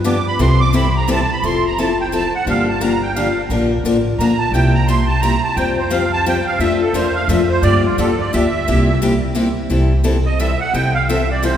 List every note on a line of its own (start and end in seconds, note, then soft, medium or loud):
0.00 0.19 G2 medium
0.04 0.16 D3 medium
0.04 0.16 F3 medium
0.04 0.16 B3 medium
0.04 0.16 D4 medium
0.04 0.17 G4 medium
0.04 0.26 D6 medium
0.27 0.40 B5 loud
0.39 1.22 C2 loud
0.39 0.60 C3 medium
0.39 0.60 E3 medium
0.39 0.60 G3 medium
0.39 0.61 C4 medium
0.39 0.61 E4 medium
0.39 0.61 A4 medium
0.39 0.60 C6 medium
0.60 0.74 D6 loud
0.73 0.85 C3 medium
0.73 0.85 E3 medium
0.73 0.85 G3 medium
0.73 0.85 C4 medium
0.73 0.85 E4 medium
0.73 0.85 A4 medium
0.73 0.95 B5 medium
0.97 1.09 A#5 medium
1.08 1.19 C3 medium
1.08 1.20 E3 medium
1.08 1.20 G3 medium
1.08 1.20 C4 loud
1.08 1.19 E4 medium
1.08 1.20 A4 loud
1.08 1.30 A5 medium
1.32 1.44 B5 medium
1.43 2.25 F1 medium
1.43 1.64 F3 medium
1.43 1.64 C4 medium
1.43 1.64 E4 medium
1.43 1.65 A4 medium
1.43 1.65 C6 loud
1.67 1.78 A#5 medium
1.78 1.89 F3 medium
1.78 1.89 C4 medium
1.78 1.89 E4 medium
1.78 1.89 A4 medium
1.78 1.98 A5 medium
2.01 2.13 G5 medium
2.12 2.23 F3 medium
2.12 2.24 C4 medium
2.12 2.24 E4 medium
2.12 2.24 A4 medium
2.12 2.33 A5 medium
2.35 2.47 F#5 medium
2.46 3.29 G1 medium
2.46 2.67 D3 medium
2.46 2.68 F3 medium
2.46 2.68 A#3 medium
2.46 2.68 D4 medium
2.46 2.68 G4 medium
2.46 2.68 F5 medium
2.69 2.81 A5 medium
2.81 2.92 D3 medium
2.81 2.92 F3 medium
2.81 2.92 A#3 medium
2.81 2.92 D4 loud
2.81 2.92 G4 medium
2.81 3.02 A#5 medium
3.03 3.15 G5 medium
3.16 3.27 D3 medium
3.16 3.27 F3 medium
3.16 3.27 A#3 medium
3.16 3.27 D4 medium
3.16 3.27 G4 medium
3.16 3.41 F5 medium
3.49 3.77 A#1 medium
3.49 3.71 D3 medium
3.49 3.71 F3 medium
3.49 3.71 A#3 medium
3.49 3.71 D4 medium
3.49 3.71 A#4 medium
3.84 4.13 A1 medium
3.84 3.95 D3 medium
3.84 3.96 F3 medium
3.84 3.96 A#3 medium
3.84 3.96 D4 medium
3.84 3.96 A#4 loud
4.18 4.48 A#1 medium
4.18 4.31 D3 medium
4.18 4.30 F3 medium
4.18 4.31 A#3 medium
4.18 4.31 D4 medium
4.18 4.31 A#4 medium
4.18 4.39 A#5 medium
4.38 4.52 A5 medium
4.52 5.35 C2 medium
4.52 4.74 C3 medium
4.52 4.75 G3 medium
4.52 4.75 A#3 medium
4.52 4.75 E4 medium
4.52 4.75 G4 medium
4.52 4.73 G5 medium
4.75 4.87 A#5 loud
4.87 4.99 C3 medium
4.87 4.99 G3 medium
4.87 4.99 A#3 medium
4.87 4.99 E4 medium
4.87 5.00 G4 medium
4.87 5.08 C6 medium
5.06 5.20 A5 medium
5.21 5.33 C3 medium
5.21 5.33 G3 medium
5.21 5.33 A#3 medium
5.21 5.34 E4 medium
5.21 5.34 G4 medium
5.21 5.42 A#5 loud
5.44 5.56 A5 medium
5.56 6.39 F2 medium
5.56 5.78 F3 medium
5.56 5.78 G3 medium
5.56 5.78 C4 medium
5.56 5.78 G4 medium
5.56 5.78 C5 medium
5.56 5.77 G5 medium
5.78 5.91 C5 medium
5.90 6.02 F3 medium
5.90 6.02 G3 medium
5.90 6.02 C4 medium
5.90 6.02 G4 loud
5.90 6.02 C5 medium
5.90 6.12 F5 medium
6.13 6.25 A5 loud
6.26 6.37 F3 medium
6.26 6.37 G3 loud
6.26 6.37 C4 medium
6.26 6.37 G4 loud
6.26 6.37 C5 medium
6.26 6.46 G5 medium
6.46 6.59 F5 medium
6.59 6.87 F2 medium
6.59 6.81 F3 medium
6.59 6.81 A3 medium
6.59 6.81 D4 medium
6.59 6.81 F4 medium
6.59 6.81 A#4 medium
6.59 6.80 E5 medium
6.82 6.94 A4 medium
6.93 7.23 E2 medium
6.93 7.05 F3 medium
6.93 7.05 A3 medium
6.93 7.06 D4 loud
6.93 7.06 F4 medium
6.93 7.06 A#4 loud
6.93 7.15 C5 medium
7.15 7.28 F5 loud
7.28 7.58 F2 medium
7.28 7.40 F3 medium
7.28 7.40 A3 medium
7.28 7.40 D4 medium
7.28 7.40 F4 loud
7.28 7.41 A#4 loud
7.28 7.49 E5 medium
7.49 7.62 C5 medium
7.62 7.90 G2 medium
7.62 7.84 D3 medium
7.62 7.84 F3 medium
7.62 7.84 A#3 medium
7.62 7.84 D4 medium
7.62 7.84 G4 medium
7.62 7.83 D5 loud
7.84 7.97 F4 medium
7.98 8.27 E2 medium
7.98 8.09 D3 medium
7.98 8.09 F3 medium
7.98 8.09 A#3 loud
7.98 8.09 D4 medium
7.98 8.10 G4 medium
7.98 8.19 A4 medium
8.19 8.32 D5 medium
8.33 8.62 D2 medium
8.33 8.44 D3 medium
8.33 8.44 F3 medium
8.33 8.44 A#3 medium
8.33 8.44 D4 medium
8.33 8.44 G4 loud
8.33 8.98 E5 medium
8.68 9.51 C2 medium
8.68 8.88 C3 medium
8.68 8.88 G3 medium
8.68 8.88 A#3 medium
8.68 8.88 E4 medium
8.68 8.88 G4 medium
9.02 9.13 C3 medium
9.02 9.13 G3 loud
9.02 9.13 A#3 loud
9.02 9.13 E4 medium
9.02 9.13 G4 medium
9.35 9.46 C3 medium
9.35 9.46 G3 medium
9.35 9.47 A#3 medium
9.35 9.47 E4 loud
9.35 9.47 G4 medium
9.70 10.53 C2 medium
9.70 9.91 C3 medium
9.70 9.91 E3 medium
9.70 9.91 G3 medium
9.70 9.91 C4 medium
9.70 9.91 E4 medium
9.70 9.92 A4 medium
10.04 10.15 C3 medium
10.04 10.15 E3 medium
10.04 10.16 G3 medium
10.04 10.16 C4 medium
10.04 10.16 E4 medium
10.04 10.16 A4 loud
10.26 10.39 D#5 medium
10.39 10.50 C3 medium
10.39 10.51 E3 medium
10.39 10.51 G3 medium
10.39 10.51 C4 medium
10.39 10.51 E4 medium
10.39 10.51 A4 loud
10.39 10.60 E5 medium
10.60 10.73 F#5 medium
10.74 11.57 C2 medium
10.74 10.95 C3 medium
10.74 10.95 E3 medium
10.74 10.95 G3 medium
10.74 10.95 C4 medium
10.74 10.95 E4 medium
10.74 10.95 A4 medium
10.74 10.94 G5 loud
10.95 11.08 F5 loud
11.09 11.20 C3 medium
11.09 11.20 E3 medium
11.09 11.20 G3 medium
11.09 11.20 C4 loud
11.09 11.20 E4 medium
11.09 11.21 A4 medium
11.09 11.29 E5 medium
11.31 11.43 D5 medium
11.43 11.54 C3 medium
11.43 11.54 E3 medium
11.43 11.54 G3 medium
11.43 11.54 C4 medium
11.43 11.54 E4 loud
11.43 11.54 A4 medium
11.43 11.57 C5 medium